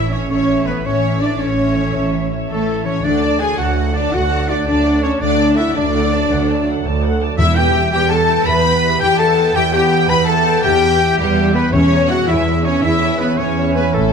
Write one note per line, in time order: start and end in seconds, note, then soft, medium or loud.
0.00 0.23 A1 medium
0.00 0.84 A2 medium
0.00 0.28 E3 medium
0.00 0.66 E3 medium
0.00 0.28 A3 medium
0.00 1.60 C#4 soft
0.00 0.10 E4 soft
0.00 0.12 E4 medium
0.00 0.29 A4 medium
0.00 0.12 C#5 medium
0.00 1.98 C#5 soft
0.00 0.11 E5 medium
0.00 0.12 E5 medium
0.00 0.13 E5 medium
0.00 0.14 E5 medium
0.11 0.29 C#4 medium
0.11 0.48 E4 medium
0.11 0.19 C#5 medium
0.11 0.29 C#5 medium
0.11 0.28 C#5 medium
0.11 0.29 C#5 medium
0.11 0.30 C#5 medium
0.11 0.29 C#5 medium
0.11 0.29 E5 medium
0.29 0.79 A1 medium
0.29 0.83 E3 medium
0.29 0.83 A3 medium
0.29 0.66 C#4 medium
0.29 0.66 C#4 loud
0.29 1.39 A4 medium
0.29 0.66 C#5 medium
0.29 0.68 C#5 medium
0.29 0.69 C#5 medium
0.29 0.66 C#5 medium
0.29 0.48 C#5 medium
0.29 0.66 C#5 medium
0.29 0.47 E5 medium
0.49 1.03 E4 medium
0.49 0.66 C#5 medium
0.49 0.66 E5 medium
0.66 1.21 E3 medium
0.66 0.85 B3 medium
0.66 0.74 B4 medium
0.66 0.84 B4 medium
0.66 0.85 B4 medium
0.66 0.87 B4 medium
0.66 0.83 C#5 medium
0.66 0.84 E5 medium
0.84 1.34 A1 medium
0.84 3.06 A2 medium
0.84 1.38 E3 medium
0.84 1.39 A3 medium
0.84 1.21 C#4 medium
0.84 1.21 C#4 loud
0.84 1.02 C#5 medium
0.84 1.21 C#5 medium
0.84 1.22 C#5 medium
0.84 1.21 C#5 medium
0.84 1.22 C#5 medium
0.84 1.02 E5 medium
1.03 1.21 C#5 medium
1.03 1.20 E5 medium
1.21 1.76 E3 medium
1.21 1.40 D4 medium
1.21 1.40 D4 loud
1.21 1.39 C#5 medium
1.21 1.40 D5 medium
1.21 1.42 D5 medium
1.21 1.40 D5 medium
1.21 1.31 D5 medium
1.21 1.39 E5 medium
1.39 1.88 A1 medium
1.39 2.48 E3 medium
1.39 2.48 A3 medium
1.39 2.29 C#4 medium
1.39 2.32 C#4 medium
1.39 2.48 A4 medium
1.39 2.29 C#5 medium
1.39 1.57 C#5 medium
1.39 2.32 C#5 medium
1.39 2.30 C#5 medium
1.39 1.57 E5 medium
1.58 1.94 E4 soft
1.58 1.75 C#5 medium
1.58 1.75 E5 medium
1.76 2.12 E3 medium
1.76 1.93 C#5 medium
1.76 1.93 E5 medium
1.94 2.43 A1 medium
1.94 2.30 E4 soft
1.94 2.11 C#5 medium
1.94 2.12 E5 medium
2.13 2.84 E3 medium
2.13 2.30 C#5 medium
2.13 2.31 E5 medium
2.31 2.66 E4 medium
2.31 2.48 C#5 medium
2.31 2.49 E5 medium
2.49 2.97 A1 medium
2.49 3.03 E3 medium
2.49 2.83 A3 loud
2.49 2.84 A3 medium
2.49 3.03 A3 medium
2.49 2.83 A4 medium
2.49 3.57 A4 medium
2.49 2.83 A4 medium
2.49 2.87 A4 medium
2.49 2.83 A4 medium
2.49 2.68 C#5 medium
2.49 2.68 E5 medium
2.68 3.05 E4 medium
2.68 2.85 C#5 medium
2.68 2.85 E5 medium
2.85 3.05 E3 medium
2.85 3.03 C#4 medium
2.85 3.04 C#4 medium
2.85 2.93 C#5 medium
2.85 3.06 C#5 medium
2.85 3.05 C#5 medium
2.85 3.04 C#5 medium
2.85 3.04 E5 medium
3.03 3.52 D2 medium
3.03 5.21 D3 medium
3.03 3.59 F#3 medium
3.03 3.57 A3 medium
3.03 3.39 D4 loud
3.03 3.40 D4 medium
3.03 3.21 A4 medium
3.03 3.39 D5 medium
3.03 3.40 D5 medium
3.03 3.42 D5 medium
3.03 3.40 D5 medium
3.03 3.21 F#5 medium
3.22 3.93 D4 medium
3.22 3.40 D5 medium
3.22 3.40 A5 medium
3.39 3.75 F#4 medium
3.39 3.58 G#4 loud
3.39 3.58 G#4 medium
3.39 3.58 A4 medium
3.39 3.58 F#5 medium
3.39 3.48 G#5 medium
3.39 3.58 G#5 medium
3.39 3.61 G#5 medium
3.39 3.59 G#5 medium
3.57 4.07 D2 medium
3.57 4.13 F#3 medium
3.57 4.13 A3 medium
3.57 3.95 F#4 medium
3.57 4.65 A4 medium
3.57 3.76 D5 medium
3.57 3.93 F#5 medium
3.57 3.94 F#5 medium
3.57 3.95 F#5 medium
3.57 3.98 F#5 medium
3.57 3.76 A5 medium
3.76 4.47 F#4 soft
3.76 3.93 A4 medium
3.76 3.93 F#5 medium
3.94 4.12 D4 loud
3.94 4.29 D4 medium
3.94 4.13 D4 medium
3.94 4.14 D5 medium
3.94 4.13 D5 medium
3.94 4.15 D5 medium
3.94 4.13 D5 medium
3.94 4.13 A5 medium
4.12 4.61 D2 medium
4.12 4.67 F#3 medium
4.12 5.38 A3 medium
4.12 4.67 A3 medium
4.12 4.49 F#4 loud
4.12 4.50 F#4 medium
4.12 4.31 A4 medium
4.12 4.50 F#5 medium
4.12 4.49 F#5 medium
4.12 4.31 F#5 medium
4.12 4.51 F#5 loud
4.12 4.50 F#5 medium
4.30 5.02 D4 medium
4.30 4.49 D5 medium
4.30 4.49 A5 medium
4.48 4.66 D4 medium
4.48 4.84 F#4 medium
4.48 4.66 A4 medium
4.48 4.66 D5 medium
4.48 4.67 D5 medium
4.48 4.66 D5 medium
4.48 4.66 F#5 medium
4.66 5.15 D2 medium
4.66 5.05 F#3 medium
4.66 5.05 A3 medium
4.66 5.03 D4 loud
4.66 5.03 D4 medium
4.66 5.75 A4 medium
4.66 4.85 D5 medium
4.66 5.02 D5 medium
4.66 5.04 D5 medium
4.66 5.05 D5 medium
4.66 5.03 D5 medium
4.66 4.85 A5 medium
4.85 5.57 F#4 medium
4.85 5.04 A4 medium
4.85 5.04 F#5 medium
5.02 5.12 C#4 medium
5.02 5.22 C#4 medium
5.02 6.11 D4 medium
5.02 5.11 C#5 medium
5.02 5.22 C#5 medium
5.02 5.23 C#5 medium
5.02 5.11 C#5 medium
5.02 5.22 D5 medium
5.02 5.22 A5 medium
5.20 5.69 D2 medium
5.20 7.40 D3 medium
5.20 5.75 F#3 medium
5.20 5.75 A3 medium
5.20 5.57 D4 loud
5.20 5.57 D4 medium
5.20 5.39 A4 medium
5.20 5.56 D5 medium
5.20 5.58 D5 medium
5.20 5.57 D5 medium
5.20 5.57 D5 loud
5.20 5.39 F#5 medium
5.39 6.29 A3 medium
5.39 5.58 D5 medium
5.39 5.58 A5 medium
5.56 5.76 E4 loud
5.56 5.93 F#4 medium
5.56 5.76 A4 medium
5.56 5.75 E5 loud
5.56 5.75 E5 medium
5.56 5.76 E5 medium
5.56 5.75 E5 medium
5.56 5.76 F#5 medium
5.75 6.25 D2 medium
5.75 7.35 F#3 medium
5.75 7.36 A3 medium
5.75 6.65 D4 medium
5.75 6.65 D4 loud
5.75 6.83 A4 medium
5.75 6.66 D5 loud
5.75 6.65 D5 medium
5.75 5.94 D5 medium
5.75 6.65 D5 loud
5.75 6.65 D5 medium
5.75 5.94 A5 medium
5.94 6.65 F#4 medium
5.94 6.11 A4 medium
5.94 6.11 F#5 medium
6.12 6.47 D4 medium
6.12 6.31 D5 medium
6.12 6.31 A5 medium
6.30 6.78 D2 medium
6.30 7.40 A3 medium
6.30 6.49 A4 medium
6.30 6.49 F#5 medium
6.48 7.19 D4 medium
6.48 6.67 D5 medium
6.48 6.67 A5 medium
6.66 7.01 F#4 medium
6.66 6.84 A4 medium
6.66 6.84 F#5 medium
6.84 7.32 D2 medium
6.84 7.40 A4 medium
6.84 7.03 D5 medium
6.84 7.03 A5 medium
7.02 7.40 F#4 medium
7.02 7.21 A4 medium
7.02 7.21 F#5 medium
7.20 7.40 D4 medium
7.20 7.39 D5 medium
7.20 7.39 A5 medium
7.37 7.86 E2 medium
7.37 7.89 E2 loud
7.37 11.57 E3 medium
7.37 9.55 E3 medium
7.37 11.57 B3 medium
7.37 7.55 E4 medium
7.37 7.55 E4 loud
7.37 7.55 G4 medium
7.37 7.57 E5 loud
7.37 7.46 E5 medium
7.37 7.55 E5 medium
7.37 7.55 E5 loud
7.37 7.58 E5 loud
7.37 7.56 E5 loud
7.55 8.28 E4 medium
7.55 7.91 G4 loud
7.55 7.92 G4 loud
7.55 7.75 B4 medium
7.55 7.90 G5 loud
7.55 7.74 G5 medium
7.55 7.91 G5 loud
7.55 7.92 G5 loud
7.55 7.91 G5 medium
7.75 8.10 G4 medium
7.75 7.93 G4 medium
7.75 7.93 E5 medium
7.91 8.41 E2 medium
7.91 8.10 G4 loud
7.91 8.11 G4 loud
7.91 8.11 B4 medium
7.91 9.00 B4 medium
7.91 8.08 G5 loud
7.91 8.12 G5 loud
7.91 8.10 G5 loud
7.91 8.01 G5 medium
7.91 8.11 G5 medium
8.09 8.28 G4 medium
8.09 8.83 G4 medium
8.09 8.46 A4 loud
8.09 8.48 A4 loud
8.09 8.27 E5 medium
8.09 8.47 A5 loud
8.09 8.46 A5 loud
8.09 8.47 A5 medium
8.09 8.46 A5 loud
8.09 8.47 A5 loud
8.29 8.64 E4 medium
8.29 8.47 B4 medium
8.29 8.47 G5 medium
8.45 8.95 E2 medium
8.45 9.73 B3 medium
8.45 8.65 G4 medium
8.45 9.01 B4 loud
8.45 8.65 E5 medium
8.45 9.00 B5 loud
8.45 9.01 B5 loud
8.45 9.00 B5 loud
8.45 9.01 B5 loud
8.65 9.37 E4 medium
8.65 8.83 B4 medium
8.65 8.84 G5 medium
8.84 9.18 G4 medium
8.84 9.00 G4 medium
8.84 9.00 E5 medium
9.00 9.49 E2 medium
9.00 9.19 G4 loud
9.00 9.19 B4 medium
9.00 10.10 B4 medium
9.00 9.09 G5 loud
9.00 9.19 G5 loud
9.00 9.18 G5 loud
9.00 9.20 G5 medium
9.19 9.38 G4 medium
9.19 9.54 A4 loud
9.19 9.56 A4 loud
9.19 9.38 E5 medium
9.19 9.54 A5 loud
9.19 9.57 A5 loud
9.19 9.58 A5 loud
9.37 10.45 E4 medium
9.37 9.56 B4 medium
9.37 9.55 G5 medium
9.54 10.03 E2 loud
9.54 11.72 E3 medium
9.54 9.63 G4 loud
9.54 9.72 G4 medium
9.54 9.63 G4 loud
9.54 9.72 E5 medium
9.54 9.71 G5 loud
9.54 9.72 G5 loud
9.54 9.73 G5 loud
9.54 9.74 G5 loud
9.71 10.63 B3 medium
9.71 10.08 G4 loud
9.71 10.09 G4 loud
9.71 9.91 B4 medium
9.71 10.08 G5 loud
9.71 10.11 G5 loud
9.71 9.91 G5 medium
9.71 10.11 G5 loud
9.71 10.12 G5 loud
9.90 10.09 G4 medium
9.90 10.09 E5 medium
10.08 10.57 E2 loud
10.08 10.27 B4 medium
10.08 10.27 B4 loud
10.08 10.27 G5 medium
10.08 10.27 B5 loud
10.08 10.28 B5 loud
10.08 10.31 B5 loud
10.27 10.44 G4 medium
10.27 10.99 G4 medium
10.27 10.63 A4 loud
10.27 10.44 E5 medium
10.27 10.63 A5 loud
10.27 10.62 A5 loud
10.27 10.63 A5 loud
10.27 10.66 A5 loud
10.46 10.81 E4 medium
10.46 10.64 B4 medium
10.46 10.64 G5 medium
10.63 11.12 E2 loud
10.63 11.75 B3 medium
10.63 10.82 G4 medium
10.63 11.18 G4 loud
10.63 10.82 E5 medium
10.63 11.17 G5 loud
10.63 11.18 G5 loud
10.63 11.19 G5 loud
10.82 11.54 E4 medium
10.82 11.00 B4 medium
10.82 11.00 G5 medium
11.00 11.17 G4 medium
11.00 11.36 G4 medium
11.00 11.17 E5 medium
11.18 11.67 E2 loud
11.18 11.56 G3 loud
11.18 11.55 G3 loud
11.18 11.56 G4 medium
11.18 11.54 G4 medium
11.18 11.54 G4 loud
11.18 11.55 G4 loud
11.18 11.54 G4 loud
11.18 11.37 B4 medium
11.18 11.75 B4 medium
11.18 11.37 G5 medium
11.36 11.55 G4 medium
11.36 11.75 G4 medium
11.36 11.55 E5 medium
11.54 11.73 B3 loud
11.54 11.62 B3 loud
11.54 11.91 E4 medium
11.54 11.73 B4 medium
11.54 11.72 B4 medium
11.54 11.73 B4 medium
11.54 11.74 B4 loud
11.54 11.72 B4 loud
11.54 11.73 B4 loud
11.54 11.73 G5 medium
11.72 12.24 E2 loud
11.72 12.22 E2 loud
11.72 12.82 E3 medium
11.72 14.13 E3 loud
11.72 12.09 C#4 loud
11.72 12.10 C#4 loud
11.72 14.13 C#4 loud
11.72 11.90 G#4 medium
11.72 12.09 C#5 loud
11.72 12.11 C#5 loud
11.72 12.09 C#5 loud
11.72 12.10 C#5 loud
11.72 11.90 E5 medium
11.91 12.64 E4 medium
11.91 12.10 C#5 medium
11.91 12.10 G#5 medium
12.09 12.27 F#4 loud
12.09 12.29 F#4 loud
12.09 12.46 G#4 medium
12.09 12.28 G#4 medium
12.09 12.28 E5 medium
12.09 12.27 F#5 loud
12.09 12.28 F#5 loud
12.09 12.29 F#5 loud
12.09 12.28 F#5 loud
12.09 12.27 F#5 loud
12.27 12.77 E2 loud
12.27 12.65 E4 loud
12.27 13.37 C#5 medium
12.27 12.47 C#5 medium
12.27 12.64 E5 medium
12.27 12.67 E5 medium
12.27 12.65 E5 medium
12.27 12.47 G#5 medium
12.46 12.64 G#4 medium
12.46 13.19 G#4 medium
12.46 12.63 E5 medium
12.64 12.83 C#4 loud
12.64 13.75 E4 medium
12.64 12.81 C#5 medium
12.64 12.73 C#5 medium
12.64 12.83 C#5 medium
12.64 12.82 C#5 loud
12.64 12.83 C#5 loud
12.64 12.83 G#5 medium
12.81 13.32 E2 medium
12.81 13.97 E3 medium
12.81 13.20 E4 loud
12.81 13.21 E4 loud
12.81 13.01 G#4 medium
12.81 13.17 E5 loud
12.81 13.01 E5 medium
12.81 13.21 E5 loud
12.81 13.19 E5 loud
12.81 13.20 E5 medium
13.01 14.12 C#4 medium
13.01 13.20 C#5 medium
13.01 13.20 G#5 medium
13.18 13.38 B3 medium
13.18 13.39 B3 loud
13.18 13.37 G#4 medium
13.18 13.56 G#4 medium
13.18 13.27 B4 medium
13.18 13.39 B4 medium
13.18 13.38 B4 medium
13.18 13.39 B4 loud
13.18 13.37 E5 medium
13.37 13.88 E2 medium
13.37 13.75 C#4 medium
13.37 13.77 C#4 loud
13.37 13.75 C#5 medium
13.37 13.77 C#5 medium
13.37 13.57 C#5 medium
13.37 13.75 C#5 medium
13.37 14.13 C#5 medium
13.37 13.75 C#5 medium
13.37 13.57 G#5 medium
13.57 13.76 G#4 medium
13.57 13.97 G#4 medium
13.57 13.76 E5 medium
13.75 13.95 B3 loud
13.75 13.84 B3 medium
13.75 14.13 E4 medium
13.75 13.94 B4 medium
13.75 13.93 B4 medium
13.75 13.95 B4 medium
13.75 13.93 B4 medium
13.75 13.94 C#5 medium
13.75 13.94 G#5 medium
13.94 14.13 A1 medium
13.94 14.02 A2 soft
13.94 14.13 A2 medium
13.94 14.13 A3 loud
13.94 14.13 A3 medium
13.94 14.13 A4 loud
13.94 14.13 A4 medium
13.94 14.12 A4 medium
13.94 14.13 A4 medium
13.94 14.13 A4 loud
13.94 14.12 E5 medium
14.03 14.09 A2 soft